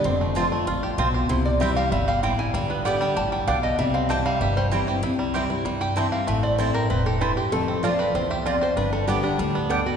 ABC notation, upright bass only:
X:1
M:4/4
L:1/8
Q:1/4=193
K:C
V:1 name="Upright bass" clef=bass
F,,,4 A,,,2 B,,,2 | C,,4 G,,,4 | G,,,4 A,,,2 B,,,2 | C,,4 G,,,4 |
C,,4 G,,4 | A,,,4 E,,,4 | F,,,4 C,,4 | G,,,4 D,,4 |]